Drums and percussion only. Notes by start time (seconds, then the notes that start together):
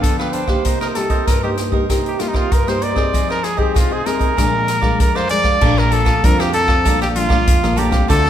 0.03 kick, closed hi-hat
0.19 cross-stick
0.33 closed hi-hat
0.47 kick, cross-stick
0.65 kick, closed hi-hat
0.81 cross-stick, closed hi-hat
0.95 cross-stick, closed hi-hat
1.10 kick, closed hi-hat
1.27 kick, cross-stick, closed hi-hat
1.57 cross-stick, closed hi-hat
1.72 kick
1.90 kick, cross-stick, closed hi-hat
2.06 closed hi-hat
2.20 cross-stick, closed hi-hat
2.34 kick, cross-stick
2.52 kick, closed hi-hat
2.68 cross-stick, closed hi-hat
2.82 closed hi-hat
2.96 kick, cross-stick
3.14 kick, closed hi-hat
3.30 cross-stick
3.44 cross-stick, closed hi-hat
3.58 kick
3.76 kick, cross-stick, closed hi-hat
4.06 cross-stick, closed hi-hat
4.20 kick, closed hi-hat
4.38 kick, cross-stick, closed hi-hat
4.68 cross-stick, closed hi-hat
4.82 kick, cross-stick
5.00 kick, closed hi-hat
5.16 cross-stick
5.29 closed hi-hat
5.44 kick, cross-stick
5.61 kick, crash
5.78 cross-stick
5.92 closed hi-hat
6.06 kick, cross-stick, closed hi-hat
6.24 kick, closed hi-hat
6.40 cross-stick, closed hi-hat
6.53 closed hi-hat
6.68 kick, cross-stick
6.85 kick, closed hi-hat
7.02 cross-stick, closed hi-hat
7.16 closed hi-hat
7.30 kick, cross-stick
7.47 kick, closed hi-hat
7.64 cross-stick, closed hi-hat
7.77 closed hi-hat
7.92 kick, cross-stick, closed hi-hat
8.10 kick, closed hi-hat
8.26 cross-stick